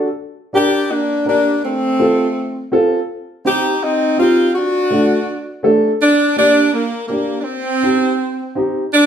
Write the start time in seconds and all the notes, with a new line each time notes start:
0.53 D4 G4 A#4
0.91 A#3 D4
1.25 A#3 D4 G4 A#4
1.64 A3 C4
1.99 C4 F4 A4
2.72 C4 F4 A4
3.45 C4 D#4 G4
3.82 C4 D#4
4.18 C4 D#4 F4 G4
4.54 D4 F#4
4.90 A3 D4 F#4
5.63 A3 D4 A4
6.01 D4
6.36 A#3 D4 G4
6.72 A#3
7.07 A#3 D4 G4
7.40 C4 D4
7.83 C4 D#4 G4
8.55 C4 D#4 G4
8.93 D4